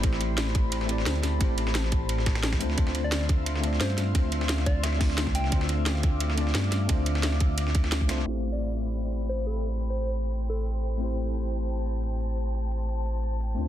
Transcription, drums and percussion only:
0.03 kick, closed hi-hat, ride
0.13 snare
0.21 closed hi-hat, ride
0.38 snare, closed hi-hat, ride
0.47 snare
0.55 kick, closed hi-hat, ride
0.72 closed hi-hat, ride
0.81 snare
0.89 closed hi-hat, ride
0.98 snare
1.06 snare, closed hi-hat, ride
1.16 ride
1.23 snare, open hi-hat, ride
1.41 kick, closed hi-hat, ride
1.58 closed hi-hat, ride
1.67 snare
1.75 snare, closed hi-hat, ride
1.84 snare
1.92 kick, closed hi-hat, ride
2.09 closed hi-hat, ride
2.18 snare
2.26 kick, snare, closed hi-hat, ride
2.35 snare, ride
2.43 snare, closed hi-hat, ride
2.53 kick, snare, ride
2.61 open hi-hat, ride
2.70 snare
2.78 kick, closed hi-hat, ride
2.87 snare
2.95 closed hi-hat, ride
3.12 snare, closed hi-hat, ride
3.21 snare
3.29 kick, closed hi-hat, ride
3.46 closed hi-hat, ride
3.56 snare
3.64 closed hi-hat, ride
3.73 snare
3.81 snare, closed hi-hat, ride
3.90 ride
3.98 snare, open hi-hat, ride
4.15 kick, closed hi-hat, ride
4.32 closed hi-hat, ride
4.41 snare
4.49 snare, closed hi-hat, ride
4.58 snare
4.66 kick, closed hi-hat, ride
4.83 snare, closed hi-hat, ride
4.93 snare
5.01 kick, snare, closed hi-hat, open hi-hat
5.10 snare
5.18 snare, closed hi-hat, ride
5.27 kick, snare
5.35 open hi-hat, ride
5.44 snare
5.52 kick, closed hi-hat, ride
5.61 snare
5.69 closed hi-hat, ride
5.86 snare, closed hi-hat, ride
5.95 snare
6.03 kick, closed hi-hat, ride
6.20 closed hi-hat, ride
6.30 snare
6.38 closed hi-hat, ride
6.47 snare
6.55 snare, closed hi-hat, ride
6.64 ride
6.72 snare, open hi-hat, ride
6.89 kick, closed hi-hat, ride
7.06 closed hi-hat, ride
7.15 snare
7.23 snare, closed hi-hat, ride
7.32 snare
7.40 kick, closed hi-hat, ride
7.58 closed hi-hat, ride
7.67 snare
7.75 kick, closed hi-hat, ride
7.84 snare
7.92 snare, closed hi-hat, ride
8.01 kick
8.09 snare, open hi-hat, ride
8.18 snare
8.26 closed hi-hat, crash
8.44 closed hi-hat
8.61 closed hi-hat
8.78 closed hi-hat
8.95 closed hi-hat
9.12 closed hi-hat
9.29 closed hi-hat
9.46 closed hi-hat
9.64 closed hi-hat
9.81 closed hi-hat
9.98 closed hi-hat
10.15 closed hi-hat
10.32 closed hi-hat
10.49 closed hi-hat
10.66 closed hi-hat
10.83 closed hi-hat
11.01 closed hi-hat
11.18 closed hi-hat
11.35 closed hi-hat
11.52 closed hi-hat
11.69 closed hi-hat
11.86 closed hi-hat
12.03 closed hi-hat
12.21 closed hi-hat
12.38 closed hi-hat
12.55 closed hi-hat
12.72 closed hi-hat
12.89 closed hi-hat
13.06 closed hi-hat
13.23 closed hi-hat
13.40 closed hi-hat
13.58 closed hi-hat

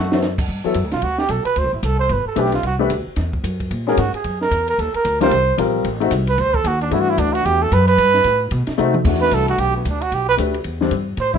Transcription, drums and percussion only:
0.12 snare
0.22 snare, hi-hat pedal
0.38 kick, crash
0.49 kick
0.74 kick, hi-hat pedal, ride
0.92 snare, ride
1.02 kick, ride
1.18 snare
1.29 kick, hi-hat pedal, ride
1.45 ride
1.56 kick, ride
1.83 kick, hi-hat pedal, ride
2.09 kick, ride
2.36 kick, hi-hat pedal, ride
2.46 snare
2.52 snare, ride
2.63 kick, ride
2.90 kick, hi-hat pedal, ride
3.16 kick, snare, ride
3.33 kick
3.44 kick, hi-hat pedal, ride
3.60 kick, ride
3.71 kick, ride
3.88 snare
3.97 kick, hi-hat pedal, ride
4.14 ride
4.24 kick, ride
4.41 snare
4.51 kick, hi-hat pedal, ride
4.68 ride
4.78 kick, ride
4.94 ride
5.05 kick, hi-hat pedal, ride
5.21 snare, ride
5.31 kick, ride
5.58 kick, hi-hat pedal, ride
5.85 kick, ride
6.01 ride
6.11 kick, hi-hat pedal, ride
6.27 ride
6.38 kick, ride
6.54 kick
6.65 kick, hi-hat pedal, ride
6.81 ride
6.91 kick, ride
7.18 kick, hi-hat pedal, ride
7.35 ride
7.45 kick, ride
7.72 kick, hi-hat pedal, ride
7.88 ride
7.98 kick, ride
8.14 snare
8.24 kick, hi-hat pedal, ride
8.51 kick, ride
8.67 snare, ride
8.78 hi-hat pedal
8.94 high tom
9.05 kick, crash
9.14 snare
9.23 snare
9.31 kick, hi-hat pedal, ride
9.48 ride
9.58 kick, ride
9.85 kick, hi-hat pedal, ride
10.02 ride
10.12 kick, ride
10.38 kick, hi-hat pedal, ride
10.54 ride
10.64 kick, ride
10.81 snare
10.91 kick, hi-hat pedal, ride
11.17 kick, ride
11.34 kick

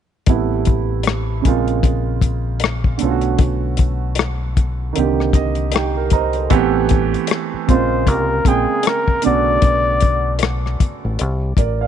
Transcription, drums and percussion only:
0.26 kick, closed hi-hat
0.65 kick, closed hi-hat
1.03 closed hi-hat
1.07 cross-stick
1.45 kick, closed hi-hat
1.68 closed hi-hat
1.83 kick, closed hi-hat
2.21 kick, closed hi-hat
2.60 closed hi-hat
2.64 cross-stick
2.84 kick
2.99 closed hi-hat
3.21 closed hi-hat
3.39 kick, closed hi-hat
3.77 kick, closed hi-hat
4.15 closed hi-hat
4.19 cross-stick
4.57 kick, closed hi-hat
4.96 closed hi-hat
5.20 cross-stick
5.33 kick, closed hi-hat
5.55 closed hi-hat
5.72 closed hi-hat
5.76 cross-stick
6.10 kick, closed hi-hat
6.33 closed hi-hat
6.50 kick, closed hi-hat
6.89 kick, closed hi-hat
7.14 closed hi-hat
7.27 closed hi-hat
7.31 cross-stick
7.69 kick, closed hi-hat
8.07 kick, closed hi-hat
8.45 kick, closed hi-hat
8.83 closed hi-hat
8.87 cross-stick
9.08 kick
9.22 closed hi-hat
9.62 kick, closed hi-hat
10.01 kick, closed hi-hat
10.39 closed hi-hat
10.43 cross-stick
10.66 cross-stick
10.80 kick, closed hi-hat
11.19 closed hi-hat
11.57 kick, closed hi-hat

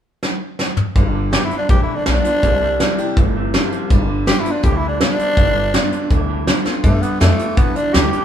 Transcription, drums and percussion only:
0.23 snare
0.59 snare
0.77 mid tom
0.95 kick, closed hi-hat
1.33 snare, closed hi-hat
1.51 closed hi-hat
1.69 kick, closed hi-hat
2.06 snare, closed hi-hat
2.25 closed hi-hat
2.43 kick, closed hi-hat
2.80 snare, closed hi-hat
2.98 closed hi-hat
3.17 kick, closed hi-hat
3.54 snare, closed hi-hat
3.72 closed hi-hat
3.90 kick, closed hi-hat
4.27 snare, closed hi-hat
4.45 closed hi-hat
4.64 kick, closed hi-hat
5.01 snare, closed hi-hat
5.19 closed hi-hat
5.37 kick, closed hi-hat
5.74 snare, closed hi-hat
5.92 closed hi-hat
6.11 kick, closed hi-hat
6.47 snare, closed hi-hat
6.65 snare
6.84 kick, closed hi-hat
7.02 closed hi-hat
7.21 snare, closed hi-hat
7.39 closed hi-hat
7.57 kick, closed hi-hat
7.76 closed hi-hat
7.94 snare, closed hi-hat
8.13 closed hi-hat

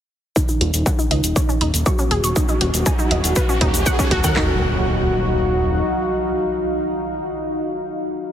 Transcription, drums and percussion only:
0.36 kick, closed hi-hat, cabasa
0.48 cabasa
0.61 closed hi-hat
0.74 closed hi-hat, cabasa
0.86 kick, closed hi-hat, cabasa
0.99 cabasa
1.11 closed hi-hat
1.24 closed hi-hat, cabasa
1.36 kick, closed hi-hat, cabasa
1.49 cabasa
1.61 closed hi-hat
1.74 closed hi-hat, cabasa
1.86 kick, closed hi-hat, cabasa
1.99 cabasa
2.11 closed hi-hat
2.24 closed hi-hat, cabasa
2.36 kick, closed hi-hat, cabasa
2.48 cabasa
2.61 closed hi-hat
2.74 closed hi-hat, cabasa
2.86 kick, closed hi-hat, cabasa
2.99 cabasa
3.11 closed hi-hat
3.24 closed hi-hat, cabasa
3.35 kick, closed hi-hat, cabasa
3.49 cabasa
3.61 kick, closed hi-hat
3.74 closed hi-hat, cabasa
3.86 kick, closed hi-hat, cabasa
3.99 kick, cabasa
4.11 kick, closed hi-hat
4.24 kick, closed hi-hat, cabasa
4.36 kick, clap

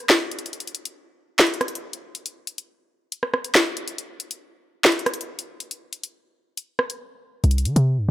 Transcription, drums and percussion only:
0.10 snare, clap
0.31 closed hi-hat
0.39 closed hi-hat
0.46 closed hi-hat
0.53 closed hi-hat
0.60 closed hi-hat
0.67 closed hi-hat
0.75 closed hi-hat
0.85 closed hi-hat
1.39 snare, clap, closed hi-hat
1.47 closed hi-hat
1.54 closed hi-hat
1.61 cross-stick, closed hi-hat
1.68 closed hi-hat
1.75 closed hi-hat
1.93 closed hi-hat
2.15 closed hi-hat
2.26 closed hi-hat
2.47 closed hi-hat
2.58 closed hi-hat
3.12 closed hi-hat
3.23 cross-stick
3.34 cross-stick
3.44 closed hi-hat
3.55 snare, clap
3.77 closed hi-hat
3.88 closed hi-hat
3.98 closed hi-hat
4.20 closed hi-hat
4.31 closed hi-hat
4.84 snare, clap, closed hi-hat
4.92 closed hi-hat
4.99 closed hi-hat
5.06 cross-stick, closed hi-hat
5.14 closed hi-hat
5.21 closed hi-hat
5.39 closed hi-hat
5.60 closed hi-hat
5.71 closed hi-hat
5.93 closed hi-hat
6.03 closed hi-hat
6.57 closed hi-hat
6.79 cross-stick
6.90 closed hi-hat
7.44 closed hi-hat
7.51 closed hi-hat
7.58 closed hi-hat
7.65 closed hi-hat
7.76 closed hi-hat

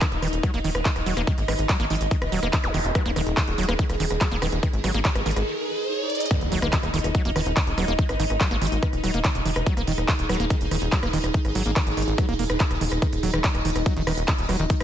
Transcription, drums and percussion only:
0.01 kick, cross-stick, clap, closed hi-hat
0.12 closed hi-hat
0.22 cross-stick, open hi-hat
0.28 closed hi-hat
0.33 closed hi-hat
0.43 kick, cross-stick, closed hi-hat
0.54 closed hi-hat
0.64 open hi-hat
0.75 cross-stick, closed hi-hat
0.85 kick, clap, closed hi-hat
0.96 cross-stick, closed hi-hat
1.06 open hi-hat
1.17 cross-stick, closed hi-hat
1.27 kick, closed hi-hat
1.38 closed hi-hat
1.48 cross-stick, open hi-hat
1.59 closed hi-hat
1.69 kick, cross-stick, clap, closed hi-hat
1.80 closed hi-hat
1.90 open hi-hat
1.96 closed hi-hat
2.01 closed hi-hat
2.11 kick, closed hi-hat
2.22 cross-stick, closed hi-hat
2.32 open hi-hat
2.43 cross-stick, closed hi-hat
2.53 kick, clap, closed hi-hat
2.64 cross-stick, closed hi-hat
2.74 open hi-hat
2.85 closed hi-hat
2.95 kick, cross-stick, closed hi-hat
3.06 closed hi-hat
3.16 cross-stick, open hi-hat
3.27 closed hi-hat
3.37 kick, cross-stick, clap, closed hi-hat
3.48 closed hi-hat
3.58 open hi-hat
3.63 closed hi-hat
3.69 cross-stick, closed hi-hat
3.79 kick, closed hi-hat
3.90 cross-stick, closed hi-hat
4.00 open hi-hat
4.11 cross-stick, closed hi-hat
4.21 kick, clap, closed hi-hat
4.31 closed hi-hat
4.42 cross-stick, open hi-hat
4.52 closed hi-hat
4.63 kick, cross-stick, closed hi-hat
4.73 closed hi-hat
4.84 cross-stick, open hi-hat
4.94 closed hi-hat
5.05 kick, clap, closed hi-hat
5.15 cross-stick, closed hi-hat
5.26 open hi-hat
5.31 closed hi-hat
5.36 cross-stick, closed hi-hat
6.10 closed hi-hat
6.15 closed hi-hat
6.20 closed hi-hat
6.26 closed hi-hat
6.31 kick, cross-stick
6.41 closed hi-hat
6.52 open hi-hat
6.62 cross-stick, closed hi-hat
6.73 kick, clap, closed hi-hat
6.83 cross-stick, closed hi-hat
6.94 open hi-hat
6.99 closed hi-hat
7.04 cross-stick, closed hi-hat
7.15 kick, closed hi-hat
7.25 closed hi-hat
7.36 cross-stick, open hi-hat
7.46 closed hi-hat
7.57 kick, cross-stick, clap, closed hi-hat
7.67 closed hi-hat
7.78 cross-stick, open hi-hat
7.88 closed hi-hat
7.99 kick, closed hi-hat
8.09 cross-stick, closed hi-hat
8.20 open hi-hat
8.30 cross-stick, closed hi-hat
8.41 kick, clap, closed hi-hat
8.51 cross-stick, closed hi-hat
8.62 open hi-hat
8.67 closed hi-hat
8.72 closed hi-hat
8.83 kick, cross-stick, closed hi-hat
8.93 closed hi-hat
9.04 cross-stick, open hi-hat
9.14 closed hi-hat
9.25 kick, cross-stick, clap, closed hi-hat
9.35 closed hi-hat
9.46 open hi-hat
9.56 cross-stick, closed hi-hat
9.66 kick, closed hi-hat
9.77 cross-stick, closed hi-hat
9.87 open hi-hat
9.98 cross-stick, closed hi-hat
10.08 kick, clap, closed hi-hat
10.19 closed hi-hat
10.29 cross-stick, open hi-hat
10.35 closed hi-hat
10.40 closed hi-hat
10.50 kick, cross-stick, closed hi-hat
10.61 closed hi-hat
10.71 cross-stick, open hi-hat
10.82 closed hi-hat
10.92 kick, clap, closed hi-hat
11.03 cross-stick, closed hi-hat
11.13 open hi-hat
11.24 cross-stick, closed hi-hat
11.34 kick, closed hi-hat
11.45 cross-stick, closed hi-hat
11.55 open hi-hat
11.66 closed hi-hat
11.76 kick, cross-stick, clap, closed hi-hat
11.87 closed hi-hat
11.97 open hi-hat
12.02 closed hi-hat
12.08 closed hi-hat
12.18 kick, cross-stick, closed hi-hat
12.29 closed hi-hat
12.39 open hi-hat
12.50 cross-stick, closed hi-hat
12.60 kick, clap, closed hi-hat
12.71 cross-stick, closed hi-hat
12.81 open hi-hat
12.92 cross-stick, closed hi-hat
13.02 kick, cross-stick, closed hi-hat
13.13 closed hi-hat
13.23 open hi-hat
13.34 cross-stick, closed hi-hat
13.44 kick, clap, closed hi-hat
13.55 cross-stick, closed hi-hat
13.65 open hi-hat
13.70 closed hi-hat
13.76 cross-stick, closed hi-hat
13.86 kick, closed hi-hat
13.97 closed hi-hat
14.07 cross-stick, open hi-hat
14.17 closed hi-hat
14.28 kick, cross-stick, clap, closed hi-hat
14.38 closed hi-hat
14.49 cross-stick, open hi-hat
14.59 closed hi-hat
14.70 kick, closed hi-hat
14.80 cross-stick, closed hi-hat

